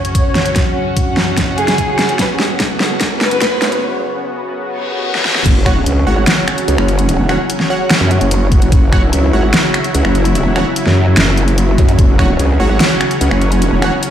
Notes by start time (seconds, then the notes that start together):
Already playing: F#2 C#3 C#4 F#4 C#5, riser
0.05 closed hi-hat
0.15 F#5, kick, closed hi-hat
0.35 snare, closed hi-hat
0.46 closed hi-hat
0.56 kick, snare, closed hi-hat
0.97 kick, closed hi-hat
1.17 snare
1.37 kick, snare, closed hi-hat
1.58 G#4, closed hi-hat
1.68 snare, closed hi-hat
1.78 kick, closed hi-hat
1.99 snare, closed hi-hat
2.09 closed hi-hat
2.19 B3 B4, kick, snare, closed hi-hat
2.39 snare
2.60 kick, snare, closed hi-hat
2.80 snare
3.01 kick, snare, closed hi-hat
3.21 B4, snare, closed hi-hat
3.31 closed hi-hat
3.41 kick, snare, closed hi-hat
3.62 snare, closed hi-hat
3.72 closed hi-hat
4.64 reverse cymbal
5.15 snare
5.25 snare
5.35 snare
5.46 F#1 C#3 F#3 C#4, kick, closed hi-hat, crash
5.66 F#4 C#5 F#5, finger snap, kick
5.86 C#2, closed hi-hat
6.07 G#1 F#4 C#5 F#5
6.27 snare, closed hi-hat
6.48 finger snap, closed hi-hat
6.58 closed hi-hat
6.68 C#2, closed hi-hat
6.78 F#1, finger snap
6.88 closed hi-hat
6.99 closed hi-hat
7.09 closed hi-hat
7.19 E1
7.29 F#4 C#5 F#5, finger snap
7.50 closed hi-hat
7.60 snare
7.70 F#4 C#5 F#5
7.90 finger snap, snare, closed hi-hat
8.01 F#2
8.11 closed hi-hat
8.21 F#1, closed hi-hat
8.31 closed hi-hat
8.52 kick, closed hi-hat
8.62 F#1, closed hi-hat
8.72 F#1 E4, kick, closed hi-hat
8.92 F#4 C#5 F#5, finger snap, kick
9.13 C#2, closed hi-hat
9.33 G#1 F#4 C#5 F#5
9.54 snare, closed hi-hat
9.74 finger snap, closed hi-hat
9.84 closed hi-hat
9.95 C#2, closed hi-hat
10.05 F#1, finger snap
10.15 closed hi-hat
10.25 closed hi-hat
10.35 closed hi-hat
10.46 E1
10.56 F#4 C#5 F#5, finger snap
10.76 closed hi-hat
10.86 F#2, snare
11.17 F#1, finger snap, snare, closed hi-hat
11.37 closed hi-hat
11.48 closed hi-hat
11.58 closed hi-hat
11.78 F#2, kick, closed hi-hat, zap
11.89 closed hi-hat
11.99 F#1 C#4, kick, closed hi-hat
12.19 F#4 C#5 F#5, finger snap, kick
12.39 C#2, closed hi-hat
12.60 G#1 F#4 C#5 F#5
12.80 snare, closed hi-hat
13.01 finger snap, closed hi-hat
13.11 closed hi-hat
13.21 C#2, closed hi-hat
13.31 F#1, finger snap
13.41 closed hi-hat
13.52 closed hi-hat
13.62 closed hi-hat
13.72 E1
13.82 F#4 C#5 F#5, finger snap
14.03 closed hi-hat